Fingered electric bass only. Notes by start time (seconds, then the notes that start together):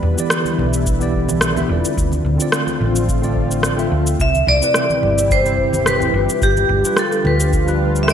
0.02 E2
0.58 B1
1.69 E1
1.97 D2
2.24 D2
2.80 A1
3.92 D2
4.20 C2
4.47 C2
5.02 G1
6.14 G1
6.42 G1
6.69 G1
7.25 D2